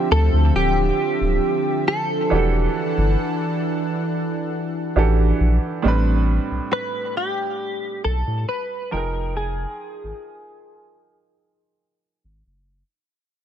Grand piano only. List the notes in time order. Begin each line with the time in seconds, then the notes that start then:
Already playing: D3 C4 E4 F4 G4
2.30 E3 D4 F#4 G4
2.35 A4
4.96 E3 D4 F#4 G4 A4
5.82 A2 G3 C4
5.87 D4 B4
8.91 F3 D#4 G5
8.95 G#4 A#4